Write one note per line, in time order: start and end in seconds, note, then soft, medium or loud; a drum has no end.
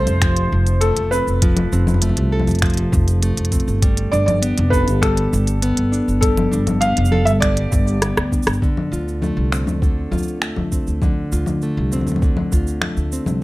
0.00 0.21 F3 medium
0.00 0.82 A3 medium
0.00 1.11 C4 medium
0.00 2.32 A4 medium
0.00 0.84 C5 loud
0.07 0.44 F1 loud
0.07 closed hi-hat soft
0.07 cabasa soft
0.22 1.41 F3 medium
0.22 finger snap medium
0.22 kick loud
0.22 closed hi-hat medium
0.22 cabasa soft
0.36 closed hi-hat soft
0.52 0.90 F1 loud
0.67 closed hi-hat soft
0.67 cabasa soft
0.81 2.02 A3 medium
0.81 1.12 A4 medium
0.81 closed hi-hat medium
0.81 cabasa soft
0.97 1.18 F1 medium
0.97 closed hi-hat soft
1.11 1.71 C4 medium
1.11 1.97 B4 medium
1.11 cabasa medium
1.27 1.64 F1 medium
1.27 cabasa soft
1.42 2.61 F3 medium
1.42 kick loud
1.42 closed hi-hat medium
1.42 cabasa soft
1.57 closed hi-hat soft
1.57 low conga medium
1.72 2.10 F1 loud
1.72 3.51 C4 medium
1.72 cabasa medium
1.87 low conga medium
1.87 cabasa soft
1.94 low conga medium
2.02 3.22 A3 medium
2.02 closed hi-hat medium
2.02 low conga medium
2.02 cabasa soft
2.09 low conga soft
2.17 2.49 C2 loud
2.17 closed hi-hat soft
2.32 4.45 A4 medium
2.40 low conga medium
2.47 2.85 F1 loud
2.47 closed hi-hat soft
2.47 cabasa soft
2.51 closed hi-hat soft
2.55 closed hi-hat soft
2.59 finger snap medium
2.59 closed hi-hat soft
2.62 3.82 F3 loud
2.62 kick medium
2.62 closed hi-hat medium
2.62 cabasa soft
2.66 closed hi-hat soft
2.70 closed hi-hat soft
2.74 closed hi-hat soft
2.77 closed hi-hat soft
2.92 3.30 F1 loud
2.92 kick loud
2.92 cabasa medium
3.08 closed hi-hat soft
3.08 cabasa soft
3.23 4.42 A3 medium
3.23 closed hi-hat medium
3.23 cabasa soft
3.37 3.58 F1 medium
3.37 closed hi-hat soft
3.45 closed hi-hat soft
3.52 3.88 C4 medium
3.52 kick medium
3.52 closed hi-hat soft
3.52 cabasa medium
3.60 closed hi-hat soft
3.68 4.05 G1 medium
3.68 cabasa soft
3.82 5.01 G3 medium
3.82 kick loud
3.82 closed hi-hat medium
3.82 cabasa soft
3.97 closed hi-hat soft
4.12 4.50 G1 medium
4.12 5.92 D4 medium
4.12 4.25 D5 medium
4.12 cabasa medium
4.26 4.68 D5 medium
4.26 closed hi-hat soft
4.26 low conga medium
4.26 cabasa soft
4.42 5.61 B3 medium
4.42 closed hi-hat medium
4.42 cabasa soft
4.58 4.89 F1 loud
4.58 closed hi-hat soft
4.70 7.11 A4 medium
4.70 5.02 B4 medium
4.70 kick medium
4.70 cabasa medium
4.88 5.25 G1 loud
4.88 closed hi-hat soft
4.88 cabasa soft
5.02 6.21 G3 medium
5.02 6.19 A4 medium
5.02 finger snap medium
5.02 kick loud
5.02 closed hi-hat medium
5.02 cabasa soft
5.17 closed hi-hat soft
5.33 5.70 G1 loud
5.33 cabasa medium
5.47 closed hi-hat soft
5.47 cabasa soft
5.62 6.81 B3 medium
5.62 closed hi-hat medium
5.62 cabasa soft
5.77 5.98 G1 medium
5.77 closed hi-hat soft
5.92 6.51 D4 medium
5.92 cabasa medium
6.08 6.45 G1 medium
6.08 cabasa soft
6.21 7.41 G3 medium
6.21 6.83 A4 medium
6.21 kick loud
6.21 closed hi-hat medium
6.21 cabasa soft
6.37 closed hi-hat soft
6.37 low conga medium
6.52 6.90 G1 medium
6.52 8.32 D4 medium
6.52 cabasa medium
6.67 closed hi-hat soft
6.67 low conga medium
6.67 cabasa soft
6.81 8.01 B3 medium
6.81 7.28 F5 loud
6.81 closed hi-hat medium
6.81 cabasa soft
6.97 7.28 F1 loud
6.97 closed hi-hat soft
7.05 cabasa medium
7.12 10.62 A4 medium
7.12 low conga medium
7.25 7.65 G1 loud
7.25 7.30 E5 loud
7.25 closed hi-hat soft
7.25 cabasa soft
7.40 8.62 G3 medium
7.40 8.27 D5 loud
7.40 finger snap medium
7.40 kick loud
7.40 closed hi-hat medium
7.40 cabasa soft
7.57 closed hi-hat soft
7.72 8.10 G1 loud
7.72 kick loud
7.72 cabasa medium
7.87 cabasa soft
8.02 8.68 B3 medium
8.02 cross-stick medium
8.02 closed hi-hat medium
8.02 cabasa soft
8.17 8.38 D2 medium
8.17 cross-stick medium
8.17 closed hi-hat soft
8.32 9.52 D4 medium
8.32 kick medium
8.32 cabasa medium
8.43 8.57 G1 medium
8.43 cabasa medium
8.47 cross-stick medium
8.47 closed hi-hat soft
8.47 cabasa soft
8.53 cabasa soft
8.62 9.81 D3 medium
8.62 kick loud
8.62 cabasa soft
8.77 low conga medium
8.92 9.29 D2 medium
8.92 10.10 F4 medium
8.92 cabasa medium
9.08 cabasa soft
9.22 10.41 A3 medium
9.22 low conga medium
9.22 cabasa soft
9.37 9.67 C2 medium
9.52 10.72 C4 medium
9.52 finger snap medium
9.52 cabasa medium
9.67 10.04 D2 medium
9.67 low conga medium
9.67 cabasa soft
9.82 11.01 D3 medium
9.82 kick loud
9.82 cabasa soft
10.11 10.49 D2 medium
10.11 11.31 F4 medium
10.11 low conga medium
10.11 cabasa soft
10.18 cabasa soft
10.23 cabasa medium
10.28 cabasa soft
10.42 11.62 A3 medium
10.42 finger snap medium
10.42 cabasa soft
10.56 10.77 D2 medium
10.56 low conga medium
10.72 11.92 C4 medium
10.72 kick medium
10.72 cabasa medium
10.87 11.25 D2 medium
10.87 cabasa soft
11.02 12.21 D3 medium
11.02 kick loud
11.02 low conga medium
11.02 cabasa soft
11.32 11.69 D2 medium
11.32 12.52 F4 medium
11.32 cabasa medium
11.46 low conga medium
11.46 cabasa soft
11.62 12.81 A3 medium
11.62 cabasa soft
11.77 12.06 C2 medium
11.92 13.12 C4 medium
11.92 low conga soft
11.92 cabasa medium
11.96 low conga soft
12.01 low conga soft
12.06 12.44 D2 medium
12.06 low conga soft
12.06 cabasa soft
12.12 low conga medium
12.16 low conga medium
12.22 13.43 D3 medium
12.22 kick loud
12.22 cabasa soft
12.37 low conga medium
12.52 12.90 D2 medium
12.52 13.43 F4 medium
12.52 kick medium
12.52 cabasa medium
12.67 cabasa soft
12.82 13.43 A3 medium
12.82 finger snap medium
12.82 low conga medium
12.97 13.17 D2 medium
12.97 cabasa soft
13.12 13.43 C4 medium
13.12 cabasa medium
13.26 13.43 C2 medium
13.26 low conga medium
13.26 cabasa soft